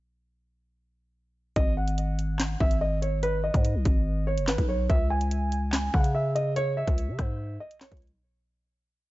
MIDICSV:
0, 0, Header, 1, 4, 480
1, 0, Start_track
1, 0, Key_signature, 5, "minor"
1, 0, Tempo, 416667
1, 1801, Time_signature, 4, 2, 24, 8
1, 10483, End_track
2, 0, Start_track
2, 0, Title_t, "Grand piano"
2, 0, Program_c, 0, 0
2, 1800, Note_on_c, 0, 75, 108
2, 1984, Note_off_c, 0, 75, 0
2, 2040, Note_on_c, 0, 78, 76
2, 2954, Note_off_c, 0, 78, 0
2, 3000, Note_on_c, 0, 76, 88
2, 3184, Note_off_c, 0, 76, 0
2, 3239, Note_on_c, 0, 75, 86
2, 3424, Note_off_c, 0, 75, 0
2, 3479, Note_on_c, 0, 73, 86
2, 3664, Note_off_c, 0, 73, 0
2, 3720, Note_on_c, 0, 71, 99
2, 3904, Note_off_c, 0, 71, 0
2, 3959, Note_on_c, 0, 75, 82
2, 4873, Note_off_c, 0, 75, 0
2, 4919, Note_on_c, 0, 73, 83
2, 5103, Note_off_c, 0, 73, 0
2, 5159, Note_on_c, 0, 71, 81
2, 5344, Note_off_c, 0, 71, 0
2, 5399, Note_on_c, 0, 73, 75
2, 5584, Note_off_c, 0, 73, 0
2, 5640, Note_on_c, 0, 76, 97
2, 5824, Note_off_c, 0, 76, 0
2, 5879, Note_on_c, 0, 80, 84
2, 6794, Note_off_c, 0, 80, 0
2, 6840, Note_on_c, 0, 78, 83
2, 7024, Note_off_c, 0, 78, 0
2, 7080, Note_on_c, 0, 76, 87
2, 7264, Note_off_c, 0, 76, 0
2, 7320, Note_on_c, 0, 75, 88
2, 7504, Note_off_c, 0, 75, 0
2, 7560, Note_on_c, 0, 73, 115
2, 7744, Note_off_c, 0, 73, 0
2, 7800, Note_on_c, 0, 76, 91
2, 8714, Note_off_c, 0, 76, 0
2, 8759, Note_on_c, 0, 75, 83
2, 8944, Note_off_c, 0, 75, 0
2, 9000, Note_on_c, 0, 73, 91
2, 9184, Note_off_c, 0, 73, 0
2, 10483, End_track
3, 0, Start_track
3, 0, Title_t, "808-style bass"
3, 0, Program_c, 1, 38
3, 1800, Note_on_c, 1, 32, 116
3, 2954, Note_off_c, 1, 32, 0
3, 3001, Note_on_c, 1, 32, 104
3, 4037, Note_off_c, 1, 32, 0
3, 4080, Note_on_c, 1, 44, 112
3, 4320, Note_on_c, 1, 35, 98
3, 4337, Note_off_c, 1, 44, 0
3, 4434, Note_off_c, 1, 35, 0
3, 4440, Note_on_c, 1, 32, 110
3, 5040, Note_on_c, 1, 30, 103
3, 5058, Note_off_c, 1, 32, 0
3, 5160, Note_on_c, 1, 32, 99
3, 5178, Note_off_c, 1, 30, 0
3, 5274, Note_off_c, 1, 32, 0
3, 5279, Note_on_c, 1, 35, 100
3, 5625, Note_off_c, 1, 35, 0
3, 5640, Note_on_c, 1, 37, 116
3, 6794, Note_off_c, 1, 37, 0
3, 6841, Note_on_c, 1, 49, 103
3, 7877, Note_off_c, 1, 49, 0
3, 7920, Note_on_c, 1, 37, 117
3, 8161, Note_on_c, 1, 49, 98
3, 8178, Note_off_c, 1, 37, 0
3, 8274, Note_off_c, 1, 49, 0
3, 8280, Note_on_c, 1, 44, 108
3, 8741, Note_off_c, 1, 44, 0
3, 9119, Note_on_c, 1, 37, 110
3, 9360, Note_on_c, 1, 35, 98
3, 9378, Note_off_c, 1, 37, 0
3, 9474, Note_off_c, 1, 35, 0
3, 10483, End_track
4, 0, Start_track
4, 0, Title_t, "Drums"
4, 1800, Note_on_c, 9, 36, 125
4, 1800, Note_on_c, 9, 42, 76
4, 1915, Note_off_c, 9, 36, 0
4, 1915, Note_off_c, 9, 42, 0
4, 2161, Note_on_c, 9, 42, 75
4, 2276, Note_off_c, 9, 42, 0
4, 2280, Note_on_c, 9, 42, 89
4, 2395, Note_off_c, 9, 42, 0
4, 2520, Note_on_c, 9, 42, 76
4, 2635, Note_off_c, 9, 42, 0
4, 2758, Note_on_c, 9, 39, 94
4, 2761, Note_on_c, 9, 38, 120
4, 2761, Note_on_c, 9, 42, 85
4, 2873, Note_off_c, 9, 39, 0
4, 2876, Note_off_c, 9, 38, 0
4, 2876, Note_off_c, 9, 42, 0
4, 3001, Note_on_c, 9, 36, 109
4, 3116, Note_off_c, 9, 36, 0
4, 3121, Note_on_c, 9, 42, 79
4, 3236, Note_off_c, 9, 42, 0
4, 3484, Note_on_c, 9, 42, 72
4, 3600, Note_off_c, 9, 42, 0
4, 3721, Note_on_c, 9, 42, 76
4, 3836, Note_off_c, 9, 42, 0
4, 4080, Note_on_c, 9, 36, 97
4, 4081, Note_on_c, 9, 42, 77
4, 4195, Note_off_c, 9, 36, 0
4, 4197, Note_off_c, 9, 42, 0
4, 4200, Note_on_c, 9, 42, 89
4, 4316, Note_off_c, 9, 42, 0
4, 4440, Note_on_c, 9, 36, 102
4, 4440, Note_on_c, 9, 42, 79
4, 4555, Note_off_c, 9, 42, 0
4, 4556, Note_off_c, 9, 36, 0
4, 5041, Note_on_c, 9, 42, 78
4, 5156, Note_off_c, 9, 42, 0
4, 5156, Note_on_c, 9, 39, 92
4, 5159, Note_on_c, 9, 38, 115
4, 5271, Note_off_c, 9, 39, 0
4, 5274, Note_off_c, 9, 38, 0
4, 5279, Note_on_c, 9, 36, 104
4, 5280, Note_on_c, 9, 42, 70
4, 5394, Note_off_c, 9, 36, 0
4, 5396, Note_off_c, 9, 42, 0
4, 5640, Note_on_c, 9, 36, 117
4, 5641, Note_on_c, 9, 42, 76
4, 5755, Note_off_c, 9, 36, 0
4, 5756, Note_off_c, 9, 42, 0
4, 6001, Note_on_c, 9, 42, 78
4, 6117, Note_off_c, 9, 42, 0
4, 6120, Note_on_c, 9, 42, 90
4, 6236, Note_off_c, 9, 42, 0
4, 6360, Note_on_c, 9, 42, 79
4, 6475, Note_off_c, 9, 42, 0
4, 6597, Note_on_c, 9, 39, 96
4, 6600, Note_on_c, 9, 38, 122
4, 6601, Note_on_c, 9, 42, 86
4, 6713, Note_off_c, 9, 39, 0
4, 6716, Note_off_c, 9, 38, 0
4, 6716, Note_off_c, 9, 42, 0
4, 6841, Note_on_c, 9, 36, 112
4, 6956, Note_off_c, 9, 36, 0
4, 6961, Note_on_c, 9, 42, 77
4, 7076, Note_off_c, 9, 42, 0
4, 7325, Note_on_c, 9, 42, 75
4, 7440, Note_off_c, 9, 42, 0
4, 7561, Note_on_c, 9, 42, 76
4, 7676, Note_off_c, 9, 42, 0
4, 7920, Note_on_c, 9, 36, 95
4, 7921, Note_on_c, 9, 42, 74
4, 8035, Note_off_c, 9, 36, 0
4, 8036, Note_off_c, 9, 42, 0
4, 8040, Note_on_c, 9, 42, 91
4, 8155, Note_off_c, 9, 42, 0
4, 8279, Note_on_c, 9, 37, 93
4, 8280, Note_on_c, 9, 36, 100
4, 8280, Note_on_c, 9, 42, 79
4, 8394, Note_off_c, 9, 37, 0
4, 8395, Note_off_c, 9, 42, 0
4, 8396, Note_off_c, 9, 36, 0
4, 8881, Note_on_c, 9, 42, 78
4, 8996, Note_off_c, 9, 42, 0
4, 8996, Note_on_c, 9, 39, 93
4, 8999, Note_on_c, 9, 38, 112
4, 9111, Note_off_c, 9, 39, 0
4, 9114, Note_off_c, 9, 38, 0
4, 9119, Note_on_c, 9, 36, 102
4, 9120, Note_on_c, 9, 42, 73
4, 9180, Note_off_c, 9, 42, 0
4, 9180, Note_on_c, 9, 42, 63
4, 9234, Note_off_c, 9, 36, 0
4, 9240, Note_off_c, 9, 42, 0
4, 9240, Note_on_c, 9, 42, 53
4, 9300, Note_off_c, 9, 42, 0
4, 9300, Note_on_c, 9, 42, 42
4, 9415, Note_off_c, 9, 42, 0
4, 10483, End_track
0, 0, End_of_file